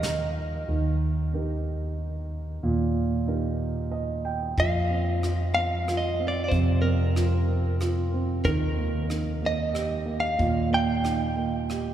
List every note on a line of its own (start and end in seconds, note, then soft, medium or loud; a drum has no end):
0.00 0.64 D#2 medium
0.00 0.64 D#3 medium
0.00 0.70 D#4 soft
0.00 0.70 G4 soft
0.00 0.35 A#4 loud
0.00 0.70 A#4 medium
0.00 0.33 D#5 medium
0.00 snare medium
0.00 closed hi-hat soft
0.68 2.59 D#2 medium
0.68 2.59 D#3 medium
1.34 3.23 D#4 soft
1.34 3.23 G4 soft
1.34 3.24 A#4 soft
2.63 4.54 D#2 medium
2.63 4.54 A#2 medium
3.27 4.54 D#4 soft
3.27 4.54 G4 soft
3.27 4.54 A#4 soft
3.91 4.22 D#5 medium
4.25 4.55 G5 medium
4.58 6.48 F2 soft
4.58 6.48 F3 medium
4.58 5.52 F5 medium
4.58 kick medium
4.58 closed hi-hat soft
4.90 5.54 C4 soft
5.23 5.86 F4 soft
5.23 cross-stick medium
5.23 closed hi-hat soft
5.55 6.18 C4 soft
5.55 5.95 F5 medium
5.88 7.12 F4 soft
5.88 cross-stick medium
5.88 closed hi-hat soft
5.97 6.28 D#5 medium
6.19 6.82 C4 soft
6.28 6.43 D5 medium
6.44 6.51 D5 medium
6.48 8.41 F2 medium
6.48 8.41 C3 medium
6.48 6.81 C5 medium
6.48 kick medium
6.48 closed hi-hat soft
6.82 7.47 C4 soft
6.82 7.75 A#4 medium
7.16 7.79 F4 soft
7.16 cross-stick medium
7.16 closed hi-hat soft
7.48 8.12 C4 soft
7.80 8.43 F4 soft
7.80 cross-stick medium
7.80 closed hi-hat soft
8.13 8.44 C4 soft
8.44 10.35 D#2 medium
8.44 10.35 D#3 medium
8.44 9.05 A#4 medium
8.44 kick medium
8.44 closed hi-hat soft
8.78 9.40 A#3 soft
9.09 10.35 D#4 soft
9.09 cross-stick medium
9.09 closed hi-hat soft
9.42 10.04 A#3 soft
9.46 10.20 D#5 medium
9.73 10.99 G4 soft
9.73 cross-stick medium
9.73 closed hi-hat soft
10.06 10.69 A#3 soft
10.20 10.69 F5 medium
10.38 11.94 D#2 medium
10.38 11.94 A#2 medium
10.38 kick medium
10.38 closed hi-hat soft
10.70 11.35 A#3 soft
10.70 11.94 G5 medium
11.04 11.94 D#4 soft
11.04 cross-stick medium
11.04 closed hi-hat soft
11.37 11.94 A#3 soft
11.69 11.94 G4 soft
11.69 cross-stick medium
11.69 closed hi-hat soft